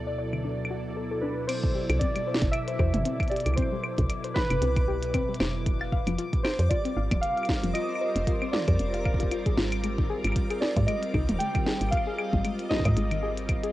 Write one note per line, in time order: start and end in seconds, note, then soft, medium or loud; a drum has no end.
0.00 1.47 D2 medium
0.00 5.66 B2 medium
0.00 5.66 F#3 medium
0.00 5.66 E4 medium
0.00 5.66 A4 medium
0.00 1.50 D5 medium
0.00 5.66 D5 medium
0.07 0.17 D5 medium
0.18 0.31 D5 medium
0.33 0.37 D3 medium
0.33 claves soft
0.45 0.53 D4 medium
0.65 claves medium
0.71 0.83 F#4 loud
0.97 1.02 A4 medium
1.11 1.18 A4 loud
1.21 1.31 D4 medium
1.21 1.49 B4 medium
1.47 1.57 C4 medium
1.47 2.02 C5 medium
1.47 13.72 D6 medium
1.47 closed hi-hat medium
1.47 crash loud
1.47 claves medium
1.64 kick loud
1.75 1.83 G4 medium
1.89 1.99 C2 loud
1.89 closed hi-hat medium
1.89 claves medium
1.99 2.10 C4 medium
1.99 2.54 D5 loud
1.99 kick loud
1.99 closed hi-hat medium
2.16 2.20 G3 medium
2.16 closed hi-hat soft
2.16 claves medium
2.27 2.36 C5 medium
2.34 snare loud
2.42 2.51 G1 loud
2.42 kick loud
2.42 closed hi-hat medium
2.51 3.33 E5 loud
2.51 closed hi-hat medium
2.51 claves medium
2.68 2.78 C5 medium
2.68 closed hi-hat soft
2.79 2.91 E2 loud
2.79 2.92 C5 medium
2.79 kick loud
2.79 claves medium
2.94 3.03 G1 loud
2.94 2.98 C3 loud
2.94 closed hi-hat medium
2.94 mid tom loud
3.05 3.14 C4 medium
3.05 closed hi-hat medium
3.20 kick loud
3.20 closed hi-hat soft
3.20 claves medium
3.23 closed hi-hat soft
3.28 3.40 G4 medium
3.28 3.55 D5 medium
3.28 closed hi-hat soft
3.32 closed hi-hat soft
3.36 closed hi-hat soft
3.40 closed hi-hat soft
3.46 3.56 C2 medium
3.46 closed hi-hat medium
3.46 claves soft
3.54 3.66 C4 medium
3.54 4.05 C5 medium
3.54 kick loud
3.54 closed hi-hat medium
3.54 claves soft
3.62 claves soft
3.72 3.76 G3 medium
3.84 3.92 C5 medium
3.84 claves medium
3.98 4.08 C2 loud
3.98 kick loud
3.98 closed hi-hat medium
4.10 closed hi-hat medium
4.10 claves medium
4.24 4.34 C5 medium
4.24 closed hi-hat soft
4.34 5.35 B4 loud
4.34 4.48 C5 medium
4.34 kick loud
4.34 snare loud
4.34 mid tom medium
4.50 4.60 G1 loud
4.50 4.54 C3 loud
4.50 closed hi-hat medium
4.50 claves medium
4.62 5.25 C2 medium
4.62 4.70 C4 medium
4.62 closed hi-hat medium
4.76 kick loud
4.76 closed hi-hat soft
4.76 claves medium
4.88 4.96 G4 medium
5.03 closed hi-hat medium
5.14 5.23 C4 medium
5.14 kick loud
5.14 closed hi-hat medium
5.14 claves medium
5.29 5.33 G3 medium
5.34 closed hi-hat soft
5.40 6.03 F1 loud
5.40 5.49 C5 medium
5.40 snare loud
5.40 claves medium
5.66 13.72 G3 medium
5.66 kick loud
5.66 closed hi-hat medium
5.81 13.72 F4 medium
5.81 5.91 F5 medium
5.81 claves medium
5.92 13.72 C4 medium
5.92 6.05 F5 medium
5.92 kick loud
6.07 6.16 F1 loud
6.07 6.11 F3 loud
6.07 closed hi-hat medium
6.07 claves medium
6.18 6.27 F4 medium
6.18 closed hi-hat medium
6.33 kick loud
6.33 closed hi-hat soft
6.43 6.68 C5 medium
6.43 6.53 C5 medium
6.43 snare loud
6.43 claves medium
6.58 6.69 F2 medium
6.58 13.72 A#4 medium
6.58 closed hi-hat medium
6.69 6.79 F4 medium
6.69 7.18 D5 loud
6.69 kick loud
6.69 closed hi-hat medium
6.69 claves soft
6.85 6.89 C4 medium
6.85 closed hi-hat soft
6.90 9.84 C5 medium
6.97 7.09 G#1 medium
6.97 7.05 F5 medium
7.11 7.21 D1 medium
7.11 kick loud
7.11 closed hi-hat medium
7.11 mid tom medium
7.11 claves medium
7.21 7.71 F5 loud
7.21 closed hi-hat medium
7.37 7.47 F5 medium
7.37 closed hi-hat soft
7.43 closed hi-hat soft
7.43 claves medium
7.49 7.62 F5 medium
7.49 kick loud
7.49 snare loud
7.54 closed hi-hat soft
7.63 7.73 F1 medium
7.63 7.67 F3 loud
7.63 closed hi-hat medium
7.73 7.83 F4 medium
7.73 8.48 D#5 loud
7.73 closed hi-hat medium
7.73 claves medium
7.95 claves soft
8.01 8.10 C5 medium
8.16 8.25 F1 loud
8.16 closed hi-hat medium
8.27 8.36 F4 medium
8.27 kick loud
8.27 closed hi-hat medium
8.42 8.46 C4 medium
8.42 claves medium
8.52 9.53 D5 medium
8.52 8.62 F5 medium
8.52 snare loud
8.52 mid tom medium
8.68 8.77 F2 loud
8.68 kick loud
8.68 closed hi-hat soft
8.68 claves medium
8.79 9.42 F1 medium
8.79 closed hi-hat medium
8.94 9.04 F5 medium
8.94 closed hi-hat soft
9.05 9.11 F5 medium
9.05 kick loud
9.05 claves medium
9.14 kick medium
9.20 9.27 F4 medium
9.20 kick medium
9.20 closed hi-hat medium
9.31 9.40 F4 medium
9.31 closed hi-hat medium
9.31 claves soft
9.46 9.56 G#4 medium
9.46 kick loud
9.46 closed hi-hat soft
9.57 10.20 G#1 medium
9.57 9.63 F4 medium
9.57 snare loud
9.72 closed hi-hat medium
9.72 claves medium
9.84 9.92 G#3 medium
9.84 closed hi-hat medium
9.84 claves soft
9.98 10.02 D#3 medium
9.98 kick loud
10.10 10.18 G#4 medium
10.24 10.34 G#1 medium
10.24 closed hi-hat medium
10.24 claves medium
10.27 claves medium
10.32 kick loud
10.32 closed hi-hat medium
10.32 claves medium
10.50 10.60 G#4 medium
10.50 closed hi-hat soft
10.50 claves medium
10.61 10.75 G#4 medium
10.61 10.88 D5 medium
10.61 snare loud
10.77 10.86 G#2 loud
10.77 10.83 G3 loud
10.77 kick loud
10.77 closed hi-hat soft
10.87 10.97 G#3 medium
10.87 11.36 D#5 loud
10.87 closed hi-hat medium
10.87 claves medium
11.03 13.72 D#5 medium
11.03 closed hi-hat soft
11.14 11.26 C2 medium
11.14 11.23 D#4 medium
11.14 kick loud
11.14 claves medium
11.29 11.38 D#1 loud
11.29 closed hi-hat medium
11.29 mid tom medium
11.39 11.49 G#3 medium
11.39 11.93 G5 loud
11.39 closed hi-hat medium
11.55 11.59 D#3 medium
11.55 kick loud
11.55 closed hi-hat soft
11.55 claves medium
11.66 11.75 G#4 medium
11.66 snare loud
11.81 11.90 G#1 medium
11.81 closed hi-hat medium
11.81 claves soft
11.89 12.66 F5 loud
11.89 kick loud
11.89 closed hi-hat medium
11.89 claves soft
11.97 claves soft
12.07 12.17 G#4 medium
12.18 12.31 G#4 medium
12.18 claves medium
12.33 12.43 G#1 medium
12.33 12.40 G3 loud
12.33 kick loud
12.45 12.53 G#3 medium
12.45 closed hi-hat medium
12.45 claves medium
12.59 closed hi-hat soft
12.69 12.79 D#4 medium
12.69 13.70 D#5 medium
12.69 kick soft
12.69 snare loud
12.69 mid tom loud
12.74 snare medium
12.77 kick medium
12.77 snare medium
12.79 snare medium
12.82 12.95 G#2 loud
12.82 snare medium
12.82 closed hi-hat soft
12.82 claves medium
12.88 kick medium
12.97 13.60 G#1 medium
12.97 13.05 G#3 medium
12.97 closed hi-hat medium
13.11 13.15 D#3 medium
13.11 closed hi-hat soft
13.11 claves medium
13.23 13.31 G#4 medium
13.37 closed hi-hat medium
13.49 kick loud
13.49 closed hi-hat medium
13.49 claves medium
13.64 13.72 G#4 medium
13.64 closed hi-hat soft